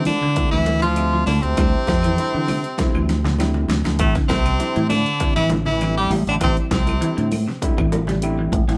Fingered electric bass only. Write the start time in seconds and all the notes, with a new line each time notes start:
Already playing: D3
0.53 D2
1.27 D2
1.44 D2
1.57 D2
1.88 F2
2.34 D3
2.94 D2
3.68 D2
3.86 D2
3.99 A1
4.30 C2
4.76 A2
5.37 A1
6.10 A1
6.27 A1
6.41 A1
6.71 C2
7.18 A2
7.78 A1
8.52 A1
8.68 A1